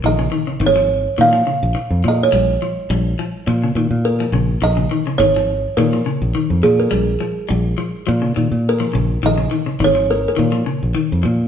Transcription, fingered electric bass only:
X:1
M:4/4
L:1/16
Q:1/4=104
K:Bbdor
V:1 name="Fingered electric bass" clef=bass
B,,,2 z2 A,,,4 B,,2 z B,,, z F,, B,,2 | B,,,2 z2 B,,,2 z2 B,,2 B,, B,,3 B,,,2 | B,,,2 z2 A,,,4 B,,2 z B,,, z F,, B,,2 | B,,,2 z2 B,,,2 z2 B,,2 B,, B,,3 B,,,2 |
B,,,2 z2 A,,,4 B,,2 z B,,, z F,, B,,2 |]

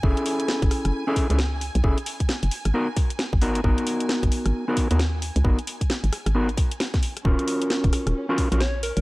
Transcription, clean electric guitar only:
X:1
M:4/4
L:1/16
Q:"Swing 16ths" 1/4=133
K:Abdor
V:1 name="Clean electric guitar"
[D_FA=A]8- [DF_A=A] [DF_A=A]2 [DF_A=A] z4 | [D_FA=A] z6 z [CEGB] z4 z [CEGB] z | [CEGB]8- [CEGB] [CEGB]2 [CEGB] z4 | [CEGB] z6 z [CEGB] z6 z |
[DFGB]8- [DFGB] [DFGB]2 [DFGB] z4 |]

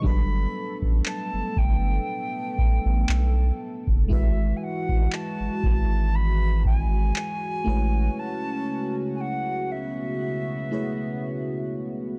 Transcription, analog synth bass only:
X:1
M:4/4
L:1/16
Q:"Swing 16ths" 1/4=59
K:Alyd
V:1 name="Analog synth bass" clef=bass
=G,,,2 z A,,, z G,,, G,,,2 z2 A,,, A,,, B,,,2 z F,,, | G,,,2 z A,,, z G,,, G,,,6 z2 A,,,2 | z16 |]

